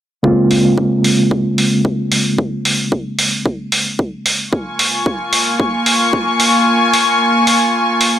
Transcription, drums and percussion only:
0.24 kick
0.51 open hi-hat
0.78 kick
1.04 open hi-hat
1.31 kick
1.58 open hi-hat
1.85 kick
2.12 open hi-hat
2.38 kick
2.65 open hi-hat
2.92 kick
3.19 open hi-hat
3.46 kick
3.72 open hi-hat
3.99 kick
4.26 open hi-hat
4.53 kick
4.79 open hi-hat
5.06 kick
5.33 open hi-hat
5.60 kick
5.86 open hi-hat
6.13 kick
6.40 open hi-hat
6.94 open hi-hat
7.47 open hi-hat
8.01 open hi-hat

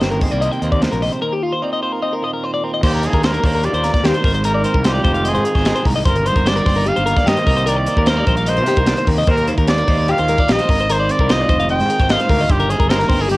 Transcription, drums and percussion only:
0.01 snare, closed hi-hat
0.11 closed hi-hat
0.21 kick, open hi-hat
0.32 closed hi-hat
0.42 closed hi-hat
0.52 closed hi-hat
0.62 closed hi-hat
0.72 kick, closed hi-hat
0.82 snare, closed hi-hat
0.92 closed hi-hat
1.02 open hi-hat
1.12 closed hi-hat
2.83 kick, crash
2.93 closed hi-hat
3.03 closed hi-hat
3.13 kick, closed hi-hat
3.23 snare, closed hi-hat
3.34 closed hi-hat
3.44 kick, open hi-hat
3.64 closed hi-hat
3.74 closed hi-hat
3.84 snare, closed hi-hat
3.94 kick, snare, closed hi-hat
4.04 snare, closed hi-hat
4.14 closed hi-hat
4.24 kick, open hi-hat
4.34 closed hi-hat
4.44 closed hi-hat
4.64 closed hi-hat
4.74 kick
4.84 snare, closed hi-hat
5.04 kick, closed hi-hat
5.14 closed hi-hat
5.25 closed hi-hat
5.35 closed hi-hat
5.45 closed hi-hat
5.55 kick, snare, closed hi-hat
5.65 snare, closed hi-hat
5.75 closed hi-hat
5.85 kick, open hi-hat
6.05 kick, closed hi-hat
6.15 closed hi-hat
6.26 closed hi-hat
6.36 kick, closed hi-hat
6.46 snare, closed hi-hat
6.56 closed hi-hat
6.66 kick, snare, open hi-hat
6.86 closed hi-hat
6.96 closed hi-hat
7.07 closed hi-hat
7.16 kick, snare, closed hi-hat
7.27 snare, closed hi-hat
7.37 closed hi-hat
7.47 kick, open hi-hat
7.57 closed hi-hat
7.67 closed hi-hat
7.86 closed hi-hat
7.97 kick
8.06 snare, closed hi-hat
8.27 kick, closed hi-hat
8.37 closed hi-hat
8.46 closed hi-hat
8.56 closed hi-hat
8.66 snare, closed hi-hat
8.76 kick, closed hi-hat
8.86 snare, closed hi-hat
8.97 closed hi-hat
9.07 kick, open hi-hat
9.27 kick, closed hi-hat
9.37 closed hi-hat
9.48 closed hi-hat
9.58 kick, closed hi-hat
9.67 snare, closed hi-hat
9.78 closed hi-hat
9.88 kick, open hi-hat
10.08 closed hi-hat
10.18 closed hi-hat
10.28 closed hi-hat
10.38 kick, closed hi-hat
10.48 snare, closed hi-hat
10.59 closed hi-hat
10.69 kick, open hi-hat
10.79 closed hi-hat
10.90 closed hi-hat
11.09 closed hi-hat
11.19 kick
11.29 snare, closed hi-hat
11.49 kick, closed hi-hat
11.60 closed hi-hat
11.69 closed hi-hat
11.80 closed hi-hat
11.90 closed hi-hat
12.00 kick, closed hi-hat
12.09 snare, closed hi-hat
12.19 closed hi-hat
12.29 kick, open hi-hat
12.50 kick, closed hi-hat
12.60 closed hi-hat
12.70 closed hi-hat
12.80 kick, closed hi-hat
12.90 snare, closed hi-hat
13.00 snare, closed hi-hat
13.10 kick, snare, open hi-hat
13.29 closed hi-hat

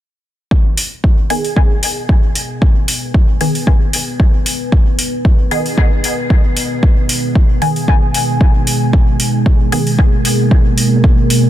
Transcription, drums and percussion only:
0.51 kick
0.78 open hi-hat
1.04 kick
1.30 open hi-hat
1.45 open hi-hat
1.56 kick
1.83 open hi-hat
2.09 kick
2.35 open hi-hat
2.62 kick
2.88 open hi-hat
3.14 kick
3.41 open hi-hat
3.55 open hi-hat
3.67 kick
3.93 open hi-hat
4.20 kick
4.46 open hi-hat
4.72 kick
4.99 open hi-hat
5.25 kick
5.51 open hi-hat
5.66 open hi-hat
5.78 kick
6.04 open hi-hat
6.30 kick
6.57 open hi-hat
6.83 kick
7.09 open hi-hat
7.35 kick
7.62 open hi-hat
7.76 open hi-hat
7.88 kick
8.14 open hi-hat
8.41 kick
8.67 open hi-hat
8.93 kick
9.20 open hi-hat
9.46 kick
9.72 open hi-hat
9.87 open hi-hat
9.99 kick
10.25 open hi-hat
10.51 kick
10.78 open hi-hat
11.04 kick
11.30 open hi-hat

